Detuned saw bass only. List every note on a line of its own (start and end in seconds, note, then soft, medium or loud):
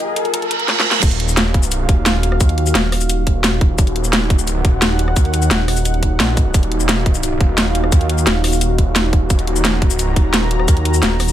0.00 0.32 D#1 medium
1.03 1.87 D#1 loud
1.89 2.39 D#1 loud
2.40 2.74 D#2 loud
2.75 3.25 D#1 loud
3.27 3.77 D#1 loud
3.78 4.38 D#1 loud
4.38 4.63 D1 loud
4.65 5.15 D#1 loud
5.16 5.49 D#2 loud
5.51 6.01 D#1 loud
6.03 6.18 D#1 loud
6.20 6.53 A#1 loud
6.54 7.39 D#1 loud
7.41 7.91 D#1 loud
7.92 8.25 D#2 loud
8.27 8.77 D#1 medium
8.78 9.29 D#1 loud
9.30 9.90 D#1 loud
9.90 10.15 D1 loud
10.16 10.67 D#1 loud
10.68 11.01 D#2 loud
11.03 11.32 D#1 loud